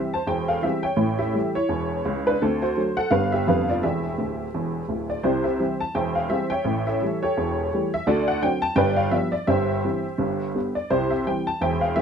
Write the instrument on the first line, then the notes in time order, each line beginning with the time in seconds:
honky-tonk piano
Already playing: E3 G3 C4 G4 E5
0.14 C5 A5
0.27 E1 E2 C5 G5
0.48 A4 F5
0.62 E3 G3 C4 G4 E5
0.83 C#5 G5
0.96 A1 A2
1.19 G4 E5
1.33 E3 G3 A3
1.55 E4 C#5
1.69 E1 E2
2.05 C#2
2.27 D4 B4
2.42 D2 D3 C4 A4
2.62 F#4 C5
2.77 D3 F#3 A3
2.97 A4 F#5
3.10 G1 G2 D3 G3 B3 B4 F5
3.32 G4 E5
3.47 F1 F2 D3 G3 B3 B4 F5
3.70 F4 D5
3.83 E1 E2 G4 E5
4.18 D1 D2
4.54 E1 E2
4.89 D1 D2
5.10 D5
5.23 C2 C3 E4 G4 C5
5.44 G4 C5 E5
5.59 E3 G3 C4
5.81 A5
5.95 E1 E2 C5 E5 G5
6.15 F5
6.29 E3 G3 C4 G4 C5 E5
6.50 C#5 E5 G5
6.64 A1 A2
6.87 A4 C#5 E5
7.02 E3 G3 A3
7.23 G4 A4 C#5
7.37 E1 E2
7.73 E3 G3 A3
7.94 E5
8.07 D2 D3 F#4 A4 D5
8.28 F#5
8.42 D3 F#3 C4 G5
8.62 A5
8.76 G1 G2 B4 D5 G5
8.96 F5
9.11 F3 G3 B3 E5
9.32 D5
9.47 G1 G2 G4 C5 E5
9.84 E3 G3 C4
10.18 G1 G2
10.55 D3 G3 B3
10.75 D5
10.90 C2 C3 E4 G4 C5
11.11 E5
11.26 E3 G3 C4 G5
11.47 A5
11.61 E1 E2 C5 E5 G5
11.81 F5
11.95 E3 G3 C4 G4 C5 E5